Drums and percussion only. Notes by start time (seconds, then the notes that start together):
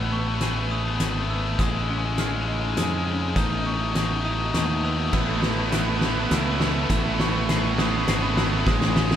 0.41 snare, closed hi-hat
1.00 snare, closed hi-hat
1.59 kick, snare, closed hi-hat
2.18 snare, closed hi-hat
2.77 snare, closed hi-hat
3.36 kick, snare, closed hi-hat
3.95 snare, closed hi-hat
4.54 snare, closed hi-hat
5.13 kick, snare, crash
5.43 snare
5.72 snare, closed hi-hat
6.01 snare
6.31 snare, closed hi-hat
6.60 snare
6.90 kick, snare, closed hi-hat
7.20 snare
7.49 snare, closed hi-hat
7.78 snare
8.08 snare, closed hi-hat
8.37 snare
8.67 kick, snare
8.81 snare
8.96 snare
9.11 snare